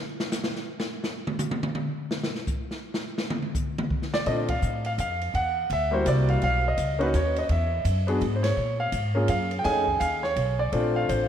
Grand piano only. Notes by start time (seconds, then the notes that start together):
4.14 D5
4.26 A3 C4 D4 F4 D#5
4.50 F5
4.86 F5
5.00 F5
5.35 F#5
5.73 E5
5.91 G3 A#3 E4 F#4 C5
6.08 D5
6.30 F5
6.44 F5
6.68 D#5
6.99 A#3 C#4 D#4 F#4 B4
7.15 C#5
7.39 D#5
7.51 E5
8.07 B3 D4 F#4 G#4
8.36 C5
8.43 C#5
8.80 F5
9.15 A#3 C#4 F4 G#4
9.30 F5
9.59 G5
9.63 A3 C#4 D#4 G#4 G#5
10.00 F5
10.23 C#5
10.59 D5
10.72 A3 C4 D4 F4
10.96 F5
11.09 C5